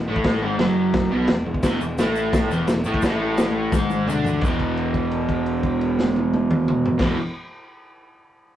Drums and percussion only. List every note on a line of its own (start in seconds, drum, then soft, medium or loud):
0.16 kick medium
0.24 kick loud
0.24 snare loud
0.24 crash medium
0.59 snare loud
0.59 crash medium
0.93 kick loud
0.93 snare loud
0.93 crash medium
1.27 snare loud
1.27 crash medium
1.54 kick medium
1.63 kick loud
1.63 snare loud
1.63 crash medium
1.63 shaker medium
1.81 shaker medium
1.98 snare loud
1.98 crash medium
1.98 shaker loud
2.15 shaker medium
2.33 kick loud
2.33 snare loud
2.33 crash medium
2.33 shaker medium
2.51 shaker medium
2.67 snare loud
2.67 crash medium
2.67 shaker medium
2.84 shaker medium
2.94 kick medium
3.02 kick medium
3.02 snare loud
3.02 crash medium
3.02 shaker loud
3.37 snare loud
3.37 crash medium
3.37 shaker loud
3.72 kick loud
3.72 snare medium
3.72 shaker loud
3.90 high tom medium
3.90 shaker medium
4.08 mid tom medium
4.08 shaker loud
4.24 floor tom loud
4.24 shaker medium
4.41 kick loud
4.41 crash medium
4.41 shaker medium
4.59 kick medium
4.59 crash soft
4.77 crash medium
4.94 kick medium
4.94 crash medium
5.11 crash soft
5.29 kick medium
5.29 crash medium
5.46 crash medium
5.63 kick medium
5.63 crash medium
5.81 crash medium
5.99 snare loud
6.16 high tom loud
6.34 high tom loud
6.51 mid tom loud
6.68 mid tom loud
6.86 floor tom loud
6.99 kick loud
6.99 snare medium
6.99 crash loud